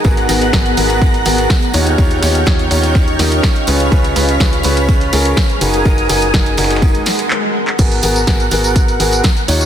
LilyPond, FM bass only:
\new Staff \with { instrumentName = "FM bass" } { \clef bass \time 4/4 \key gis \dorian \tempo 4 = 124 gis,,8 gis,,8 gis,,8 gis,,4 gis,,8 r8 dis,8 | dis,8 dis,8 dis,8 dis,4 dis,8 r8 cis,8 | cis,8 cis,8 cis,8 cis,4 cis,8 r8 fis,,8 | fis,,8 fis,,8 fis,,8 fis,,4 r4. |
gis,,8 gis,,8 gis,,8 gis,,4 gis,,8 r8 dis,8 | }